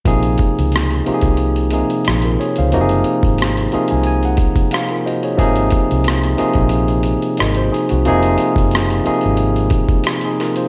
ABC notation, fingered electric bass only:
X:1
M:4/4
L:1/16
Q:"Swing 16ths" 1/4=90
K:Bbm
V:1 name="Fingered electric bass" clef=bass
B,,,2 z D,,3 z C,,4 z B,,,2 z D,, | G,,,2 z A,,,3 z C,,4 z4 z | A,,,2 z C,,3 z B,,,4 z A,,,2 z C,, | F,,,2 z G,,,3 z A,,,4 z4 z |]